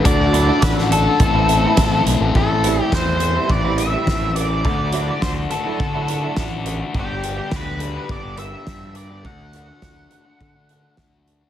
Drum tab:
HH |x-x-x-x-x-x-x-x-|--x---x---x---x-|--x---x---x---x-|--x---x---x---x-|
SD |----oo------o---|----o-------o---|----o-------o---|----o-------o---|
BD |o---o---o---o---|o---o---o---o---|o---o---o---o---|o---o---o---o---|

HH |--x---x---x---x-|
SD |----o-------o---|
BD |o---o---o---o---|